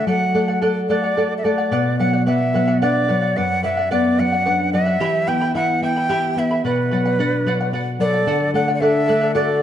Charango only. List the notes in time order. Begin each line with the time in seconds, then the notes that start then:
0.07 A4 D5 F#5
0.34 A4 D5 F#5
0.48 D5 F#5
0.62 A4 D5 F#5
0.90 A4 D5 F#5
1.04 D5 F#5
1.17 A4 D5 F#5
1.44 A4 D5 F#5
1.58 D5 F#5
1.72 B4 D5 F#5
1.99 B4 D5 F#5
2.13 D5 F#5
2.26 B4 D5 F#5
2.54 B4 D5 F#5
2.68 D5 F#5
2.82 B4 D5 F#5
3.08 B4 D5 F#5
3.22 D5 F#5
3.36 B4 D5 F#5
3.63 B4 D5 F#5
3.77 D5 F#5
3.91 B4 D5 F#5
4.18 B4 D5 F#5
4.32 D5 F#5
4.45 B4 D5 F#5
4.73 B4 D5 F#5
4.86 D5 F#5
5.00 E4 G4 E5 G5 B5
5.27 E4 E5 G5 B5
5.41 E4 E5 B5
5.55 E4 E5 G5 B5
5.82 E4 E5 G5 B5
5.96 E4 E5 B5
6.09 E4 G4 E5 G5 B5
6.37 E4 E5 G5 B5
6.51 E4 E5 B5
6.65 B4 D5 F#5
6.91 B4 D5 F#5
7.05 D5 F#5
7.19 B4 D5 F#5
7.46 B4 D5 F#5
7.60 D5 F#5
7.73 B4 D5 F#5
8.00 B4 D5 F#5
8.13 D5 F#5
8.27 A4 D5 F#5
8.54 A4 D5 F#5
8.68 D5 F#5
8.82 A4 D5 F#5
9.07 A4 D5 F#5
9.21 D5 F#5
9.35 A4 D5 F#5